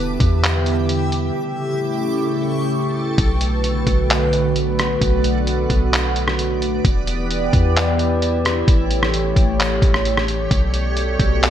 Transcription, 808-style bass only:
0.00 0.18 E1 loud
0.20 1.31 E2 loud
3.18 3.84 B1 loud
3.87 4.97 B1 loud
5.01 5.67 B1 loud
5.70 6.80 B1 medium
6.85 7.51 E1 loud
7.53 8.64 E2 loud
8.68 9.34 A1 loud
9.36 9.80 A1 loud
9.82 10.48 A1 loud
10.51 11.17 B1 loud
11.20 11.50 B1 loud

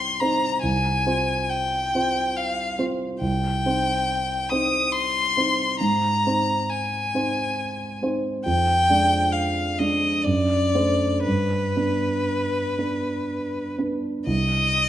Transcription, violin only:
0.00 0.21 C6 medium
0.20 0.61 A#5 medium
0.62 1.51 G#5 medium
1.50 2.38 G5 medium
2.37 2.79 F5 medium
3.20 4.51 G5 medium
4.50 4.94 D#6 medium
4.92 5.79 C6 medium
5.80 6.70 A#5 medium
6.69 8.01 G#5 medium
8.45 9.34 G5 medium
9.32 9.80 F5 medium
9.79 10.26 D#5 medium
10.25 11.24 D5 medium
11.24 13.74 B4 medium
14.26 14.89 D#5 medium

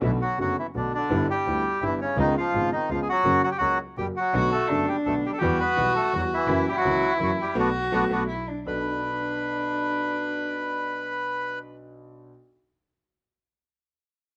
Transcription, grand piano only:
0.01 0.17 B1 medium
0.01 0.17 B2 medium
0.01 0.16 D3 medium
0.01 0.17 A3 medium
0.01 0.17 B3 medium
0.01 0.17 F#4 medium
0.38 0.53 F#1 medium
0.38 0.53 F#2 medium
0.38 0.53 D3 soft
0.38 0.54 A3 soft
0.38 0.54 B3 soft
0.38 0.54 F#4 medium
0.74 0.90 B1 medium
0.74 0.90 B2 medium
0.74 0.90 D3 medium
0.74 0.89 A3 soft
0.74 0.90 B3 soft
0.74 0.90 F#4 medium
1.10 1.25 G1 medium
1.10 1.25 G2 medium
1.10 1.25 D3 medium
1.10 1.25 G3 medium
1.10 1.25 B3 medium
1.10 1.26 E4 medium
1.47 1.61 D2 medium
1.47 1.62 D3 medium
1.47 1.61 G3 soft
1.47 1.62 B3 soft
1.47 1.62 E4 medium
1.82 1.97 G1 medium
1.82 1.97 G2 medium
1.82 1.97 D3 medium
1.82 1.97 G3 soft
1.82 1.97 B3 soft
1.82 1.97 E4 medium
2.18 2.32 C#2 loud
2.18 2.33 C#3 loud
2.18 2.32 G#3 medium
2.18 2.32 B3 medium
2.18 2.33 F4 medium
2.54 2.69 G#1 medium
2.54 2.69 G#2 medium
2.54 2.69 C#3 medium
2.54 2.69 G#3 soft
2.54 2.69 B3 soft
2.54 2.69 F4 medium
2.89 3.04 C#2 medium
2.89 3.04 C#3 medium
2.89 3.04 G#3 soft
2.89 3.04 B3 soft
2.89 3.04 F4 medium
3.25 3.40 F#2 medium
3.25 3.40 C#3 medium
3.25 3.40 F#3 medium
3.25 3.40 A#3 medium
3.25 3.40 F#4 medium
3.60 3.76 C#2 medium
3.60 3.76 C#3 medium
3.60 3.76 F#3 soft
3.60 3.76 A#3 soft
3.60 3.76 F#4 medium
3.97 4.12 F#2 medium
3.97 4.12 C#3 soft
3.97 4.12 F#3 medium
3.97 4.13 A#3 soft
3.97 4.13 F#4 medium
4.34 4.49 B1 medium
4.34 4.49 B2 medium
4.34 4.49 D3 medium
4.34 4.49 A3 medium
4.34 4.49 B3 medium
4.34 4.49 F#4 medium
4.70 4.85 F#1 medium
4.70 4.85 F#2 medium
4.70 4.85 D3 soft
4.70 4.85 A3 soft
4.70 4.85 B3 soft
4.70 4.85 F#4 medium
5.06 5.21 B1 medium
5.06 5.21 B2 medium
5.06 5.21 D3 soft
5.06 5.21 A3 soft
5.06 5.21 B3 soft
5.06 5.21 F#4 medium
5.41 5.57 E2 loud
5.41 5.57 E3 medium
5.41 5.56 G3 medium
5.41 5.57 B3 medium
5.41 5.57 F#4 medium
5.77 5.92 B1 medium
5.77 5.92 B2 medium
5.77 5.92 E3 soft
5.77 5.92 G3 soft
5.77 5.92 B3 soft
5.77 5.92 F#4 medium
6.13 6.28 E2 medium
6.13 6.28 E3 medium
6.13 6.28 G3 soft
6.13 6.28 B3 soft
6.13 6.28 F#4 medium
6.48 6.64 F#2 medium
6.48 6.63 E3 medium
6.48 6.63 F#3 medium
6.48 6.64 A#3 medium
6.48 6.64 C#4 medium
6.48 6.64 F#4 medium
6.85 7.00 C#2 medium
6.85 7.00 C#3 medium
6.85 7.00 E3 medium
6.85 7.00 A#3 soft
6.85 7.00 C#4 soft
6.85 7.00 F#4 medium
7.19 7.36 F#2 medium
7.19 7.35 E3 medium
7.19 7.35 F#3 medium
7.19 7.35 A#3 soft
7.19 7.36 C#4 soft
7.19 7.36 F#4 medium
7.55 7.68 F#3 loud
7.55 7.67 A3 loud
7.55 7.67 B3 loud
7.92 8.04 F#3 loud
7.92 8.04 A3 loud
7.92 8.04 B3 loud
8.10 8.22 F#3 loud
8.10 8.22 A3 medium
8.10 8.22 B3 medium
8.66 12.28 B1 medium
8.66 12.29 B3 soft
8.66 12.29 D4 medium
8.66 12.29 A4 medium

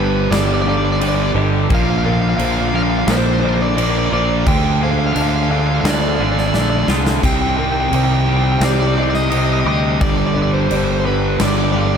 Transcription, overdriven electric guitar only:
0.00 0.33 B4 medium
0.31 0.38 D5 medium
0.39 0.46 D5 medium
0.46 0.53 D5 medium
0.54 0.61 D5 medium
0.62 0.68 D5 medium
0.69 0.77 D5 medium
0.77 0.84 D5 medium
0.85 0.92 D5 medium
0.92 1.00 D5 medium
1.01 1.08 D5 medium
1.08 1.15 D5 medium
1.15 1.23 D5 medium
1.23 1.31 D5 medium
1.75 1.82 F5 medium
1.83 1.90 F5 medium
1.90 1.97 F5 medium
1.98 2.05 F5 medium
2.05 2.13 F5 medium
2.13 2.21 F5 medium
2.22 2.29 F5 medium
2.29 2.36 F5 medium
2.37 2.44 F5 medium
2.45 2.52 F5 medium
2.52 2.60 F5 medium
2.62 2.68 F5 medium
2.69 2.75 F5 medium
2.75 2.83 F5 medium
2.83 2.90 F5 medium
2.90 2.98 F5 medium
2.99 3.06 F5 medium
3.07 3.17 C5 medium
3.07 3.15 F5 medium
3.17 3.24 C5 medium
3.26 3.33 C5 medium
3.34 3.40 C5 medium
3.40 3.48 C5 medium
3.49 3.55 C5 medium
3.55 3.62 C5 medium
3.62 3.68 D5 medium
3.68 3.76 D5 medium
3.77 3.83 D5 medium
3.83 3.90 D5 medium
3.91 3.98 D5 medium
3.98 4.05 D5 medium
4.06 4.13 D5 medium
4.14 4.48 D5 loud
4.48 4.83 G5 loud
4.84 4.91 F5 loud
4.91 4.99 F5 medium
4.99 5.06 F5 medium
5.07 5.12 F5 medium
5.13 5.20 F5 medium
5.22 5.29 F5 medium
5.29 5.35 F5 medium
5.36 5.43 F5 medium
5.43 5.51 F5 medium
5.51 5.59 F5 medium
5.59 5.66 F5 medium
5.67 5.74 F5 medium
5.75 5.80 F5 medium
5.81 5.88 F5 medium
5.86 5.94 D5 medium
5.94 6.01 D5 medium
6.01 6.09 D5 medium
6.09 6.16 D5 medium
6.16 6.23 D5 medium
6.24 6.31 D5 medium
6.32 6.39 D5 medium
6.40 6.47 D5 medium
6.47 6.54 D5 medium
6.55 6.61 D5 medium
6.61 6.69 D5 medium
6.70 6.78 D5 medium
6.79 6.86 D5 medium
7.25 7.33 G5 loud
7.33 7.41 G5 medium
7.41 7.49 G5 medium
7.49 7.56 G5 medium
7.57 7.64 G5 loud
7.65 7.71 G5 medium
7.72 7.80 G5 loud
7.80 7.88 G5 medium
7.88 7.94 G5 loud
7.95 8.03 G5 medium
8.04 8.12 G5 loud
8.14 8.19 G5 medium
8.20 8.26 G5 loud
8.27 8.34 G5 medium
8.37 8.43 G5 loud
8.44 8.51 G5 medium
8.52 8.58 G5 medium
8.59 8.64 G5 medium
8.65 8.72 D5 medium
8.72 8.80 D5 medium
8.80 8.87 D5 medium
8.87 8.95 D5 medium
8.95 9.02 D5 medium
9.03 9.10 D5 medium
9.10 9.15 D5 medium
9.15 9.22 D#5 loud
9.23 9.30 D#5 medium
9.30 9.37 D#5 medium
9.38 9.45 D#5 medium
9.45 9.52 D#5 medium
9.52 9.60 D#5 medium
9.60 9.67 D#5 medium
9.68 10.01 D#5 medium
10.01 10.09 D5 loud
10.10 10.17 D5 medium
10.17 10.25 D5 medium
10.26 10.34 D5 medium
10.34 10.42 D5 medium
10.42 10.50 D5 medium
10.54 10.61 C5 medium
10.61 10.69 C5 medium
10.69 10.77 C5 medium
10.77 10.85 C5 medium
10.85 10.92 C5 medium
10.92 10.99 C5 medium
11.00 11.06 C5 medium
11.06 11.39 B4 medium
11.41 11.47 D5 medium
11.48 11.55 D5 medium
11.57 11.64 D5 medium
11.64 11.72 D5 medium
11.72 11.80 D5 medium
11.81 11.87 D5 medium
11.87 11.95 D5 medium

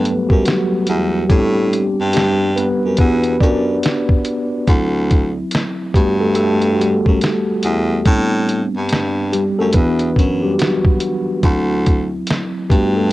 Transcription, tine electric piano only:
0.00 0.46 F#3 medium
0.00 0.31 G3 medium
0.00 1.32 A3 medium
0.00 1.31 B3 medium
0.00 0.29 G4 medium
0.00 1.31 A4 medium
0.00 0.31 B4 medium
0.29 0.38 G3 medium
0.29 0.36 G4 medium
0.45 1.11 F#3 medium
0.45 1.09 F#4 medium
1.29 2.11 G3 medium
1.29 2.57 B3 medium
1.29 2.95 C4 medium
1.29 2.95 D4 medium
1.29 2.10 G4 medium
2.14 2.35 G3 medium
2.14 2.33 G4 medium
2.56 2.77 B3 medium
2.56 2.75 B4 loud
2.99 3.39 B3 medium
2.99 3.42 D4 medium
2.99 4.64 F#4 medium
2.99 4.64 G4 medium
2.99 3.38 B4 loud
3.41 4.22 D4 medium
3.41 4.21 D5 loud
4.68 5.90 F#3 medium
4.68 5.91 C4 soft
4.68 5.91 E4 medium
5.94 6.20 G3 medium
5.94 6.21 A3 medium
5.94 7.18 B3 soft
5.94 6.72 F#4 medium
5.94 6.19 G4 medium
6.20 6.36 A3 medium
6.20 6.35 A4 medium
6.36 6.72 A3 medium
6.36 6.74 A4 loud
6.73 6.79 F#4 medium
6.78 7.60 G3 medium
6.78 7.59 G4 medium
8.05 8.66 G3 medium
8.05 8.66 B3 medium
8.05 8.66 C4 soft
8.05 8.66 D4 medium
9.32 9.58 G3 medium
9.32 9.59 G4 medium
9.59 9.74 A3 medium
9.59 9.74 A4 medium
9.74 11.40 E3 medium
9.74 10.40 B3 medium
9.74 11.40 D4 soft
9.74 10.58 F#4 medium
9.74 10.45 B4 loud
10.43 10.49 G3 medium
10.43 10.47 G4 medium
10.53 10.59 G4 medium
10.59 11.25 F#3 medium
10.59 11.23 F#4 medium
11.44 12.04 F#3 medium
11.44 12.04 C4 soft
11.44 12.04 E4 medium
12.70 12.96 G3 medium
12.70 12.97 A3 medium
12.70 13.13 B3 medium
12.70 13.13 F#4 medium
12.70 12.97 G4 medium
12.97 13.05 A3 medium
12.97 13.04 A4 medium

